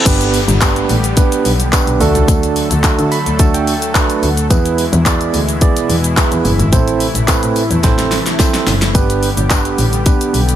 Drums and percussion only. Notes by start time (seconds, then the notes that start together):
0.06 kick, closed hi-hat, crash, tambourine, shaker
0.21 closed hi-hat, shaker
0.34 open hi-hat, tambourine, shaker
0.48 closed hi-hat, shaker
0.61 kick, clap, closed hi-hat, tambourine, shaker
0.76 closed hi-hat, shaker
0.89 open hi-hat, tambourine, shaker
1.04 closed hi-hat, shaker
1.17 kick, closed hi-hat, tambourine, shaker
1.32 closed hi-hat, shaker
1.45 open hi-hat, tambourine, shaker
1.60 closed hi-hat, shaker
1.73 kick, clap, closed hi-hat, tambourine, shaker
1.87 closed hi-hat, shaker
2.01 open hi-hat, tambourine, shaker
2.15 closed hi-hat, shaker
2.28 kick, closed hi-hat, tambourine, shaker
2.43 closed hi-hat, shaker
2.56 open hi-hat, tambourine, shaker
2.71 closed hi-hat, shaker
2.84 kick, clap, closed hi-hat, tambourine, shaker
2.99 closed hi-hat, shaker
3.12 open hi-hat, tambourine, shaker
3.26 closed hi-hat, shaker
3.39 kick, closed hi-hat, tambourine, shaker
3.54 closed hi-hat, shaker
3.67 open hi-hat, tambourine, shaker
3.82 closed hi-hat, shaker
3.95 kick, clap, closed hi-hat, tambourine, shaker
4.10 closed hi-hat, shaker
4.23 open hi-hat, tambourine, shaker
4.37 closed hi-hat, shaker
4.51 kick, closed hi-hat, tambourine, shaker
4.65 closed hi-hat, shaker
4.78 open hi-hat, shaker
4.93 closed hi-hat, shaker
5.06 kick, clap, closed hi-hat, tambourine, shaker
5.21 closed hi-hat, shaker
5.34 open hi-hat, tambourine, shaker
5.49 closed hi-hat, shaker
5.61 kick, closed hi-hat, shaker
5.77 closed hi-hat, shaker
5.89 open hi-hat, tambourine, shaker
6.04 closed hi-hat, shaker
6.17 kick, clap, closed hi-hat, tambourine, shaker
6.32 closed hi-hat, shaker
6.45 open hi-hat, tambourine, shaker
6.60 closed hi-hat, shaker
6.73 kick, closed hi-hat, tambourine, shaker
6.88 closed hi-hat, shaker
7.00 open hi-hat, tambourine, shaker
7.15 closed hi-hat, shaker
7.28 kick, clap, closed hi-hat, tambourine, shaker
7.43 closed hi-hat, shaker
7.56 open hi-hat, tambourine, shaker
7.71 closed hi-hat, shaker
7.83 kick, snare, closed hi-hat, tambourine, shaker
7.98 snare, closed hi-hat, shaker
8.12 snare, open hi-hat, tambourine, shaker
8.26 snare, closed hi-hat, shaker
8.39 kick, snare, closed hi-hat, tambourine, shaker
8.54 snare, closed hi-hat, shaker
8.67 snare, open hi-hat, tambourine, shaker
8.82 snare, closed hi-hat, shaker
8.95 kick, closed hi-hat, tambourine, shaker
9.10 closed hi-hat, shaker
9.23 open hi-hat, shaker
9.37 closed hi-hat, shaker
9.50 kick, clap, closed hi-hat, tambourine, shaker
9.65 closed hi-hat, shaker
9.78 open hi-hat, tambourine, shaker
9.93 closed hi-hat, shaker
10.06 kick, closed hi-hat, tambourine, shaker
10.21 closed hi-hat, shaker
10.34 open hi-hat, tambourine, shaker
10.49 closed hi-hat, shaker